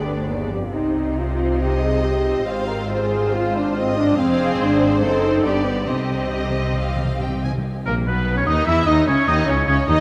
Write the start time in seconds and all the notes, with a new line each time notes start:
Already playing: G1 D2 B3 D4 D5
0.06 B4
0.18 C5
0.29 D#2 B4
0.38 G#4
0.52 F2 G4
0.63 F4
0.74 C2 C3 C4 D#4 C5
1.17 F4
1.60 G4 D#5
1.82 G#4
2.04 G4
2.47 G#1 G#2 F4 C5 F5
2.68 A#4
2.90 G#4 C5
3.34 F4
3.56 D4
3.76 C4 D#5
3.97 D4
4.17 F1 F2 C4 G#4 C5 F5
4.60 G#1 G#2 D4 C5
5.01 F#1 F#2 C4 D#4 A4 C5
5.44 G1 G2 B3 D4 G4 B4 D5
5.65 B3
5.87 C2 C3 C4 G4 C5 D#5
5.96 C3
6.03 C3
6.11 C3
6.33 C3 D#5
6.50 C3
6.58 C3
6.66 C3
6.74 C3 F5
6.81 C3
6.89 C3
6.96 C3
7.05 C3
7.12 C3
7.20 C3 G5
7.28 C3
7.35 C3
7.43 C3 G#5
7.51 C3
7.58 C3
7.85 A#1 A#2 A#3 A#4
8.06 B1 B2 B3 B4
8.36 C#3 C#4 C#5
8.46 D#2 D#3 D#4 D#5
8.66 E2 E3 E4 E5
8.86 D#2 D#3 D#4 D#5
9.07 C#2 C#3 C#4 C#5
9.27 D#2 D#3 D#4 D#5
9.47 C#2 C#3 C#4 C#5
9.67 C#2 C#3 C#4 C#5
9.87 D#2 D#3 D#4 D#5